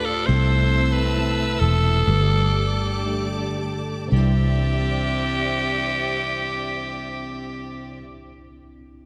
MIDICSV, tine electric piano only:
0, 0, Header, 1, 2, 480
1, 0, Start_track
1, 0, Key_signature, 0, "major"
1, 0, Tempo, 869565
1, 155, Time_signature, 4, 2, 24, 8
1, 638, Tempo, 920245
1, 1118, Tempo, 986842
1, 1598, Tempo, 1060071
1, 4312, End_track
2, 0, Start_track
2, 0, Title_t, "Tine electric piano"
2, 0, Program_c, 0, 4
2, 0, Control_c, 0, 64, 127
2, 0, Note_on_c, 0, 57, 91
2, 0, Note_on_c, 0, 62, 79
2, 0, Note_on_c, 0, 65, 76
2, 0, Note_on_c, 0, 67, 98
2, 0, Note_on_c, 0, 68, 69
2, 0, Note_on_c, 0, 69, 87
2, 129, Note_off_c, 0, 57, 0
2, 130, Note_off_c, 0, 62, 0
2, 132, Note_off_c, 0, 65, 0
2, 134, Note_off_c, 0, 67, 0
2, 147, Note_on_c, 0, 57, 103
2, 152, Note_on_c, 0, 60, 99
2, 153, Note_on_c, 0, 48, 74
2, 154, Note_on_c, 0, 64, 94
2, 156, Note_off_c, 0, 69, 0
2, 156, Note_on_c, 0, 69, 108
2, 162, Control_c, 0, 64, 0
2, 163, Note_off_c, 0, 68, 0
2, 261, Control_c, 0, 64, 127
2, 610, Note_off_c, 0, 57, 0
2, 612, Note_off_c, 0, 60, 0
2, 613, Note_off_c, 0, 64, 0
2, 614, Note_off_c, 0, 69, 0
2, 633, Note_on_c, 0, 57, 84
2, 637, Note_on_c, 0, 60, 83
2, 641, Note_on_c, 0, 64, 79
2, 642, Note_on_c, 0, 69, 96
2, 853, Note_off_c, 0, 48, 0
2, 1091, Note_off_c, 0, 57, 0
2, 1093, Note_off_c, 0, 60, 0
2, 1095, Note_off_c, 0, 64, 0
2, 1095, Note_off_c, 0, 69, 0
2, 1115, Note_on_c, 0, 57, 74
2, 1116, Note_on_c, 0, 62, 66
2, 1118, Note_on_c, 0, 50, 65
2, 1119, Note_on_c, 0, 43, 64
2, 1121, Note_on_c, 0, 67, 64
2, 1123, Control_c, 0, 64, 0
2, 1124, Note_on_c, 0, 69, 79
2, 1209, Control_c, 0, 64, 127
2, 1572, Note_off_c, 0, 57, 0
2, 1572, Note_off_c, 0, 62, 0
2, 1575, Note_off_c, 0, 67, 0
2, 1576, Note_off_c, 0, 69, 0
2, 1594, Note_on_c, 0, 57, 88
2, 1596, Note_on_c, 0, 62, 88
2, 1600, Note_on_c, 0, 67, 78
2, 1602, Note_on_c, 0, 69, 106
2, 1816, Note_off_c, 0, 43, 0
2, 1816, Note_off_c, 0, 50, 0
2, 2048, Note_off_c, 0, 57, 0
2, 2049, Note_off_c, 0, 62, 0
2, 2051, Note_off_c, 0, 67, 0
2, 2052, Note_off_c, 0, 69, 0
2, 2059, Note_on_c, 0, 60, 85
2, 2075, Note_on_c, 0, 36, 86
2, 2076, Note_on_c, 0, 62, 75
2, 2081, Control_c, 0, 64, 0
2, 2091, Note_on_c, 0, 64, 91
2, 2157, Control_c, 0, 64, 127
2, 3823, Note_off_c, 0, 60, 0
2, 3840, Note_off_c, 0, 36, 0
2, 3840, Note_off_c, 0, 62, 0
2, 3855, Note_off_c, 0, 64, 0
2, 4312, End_track
0, 0, End_of_file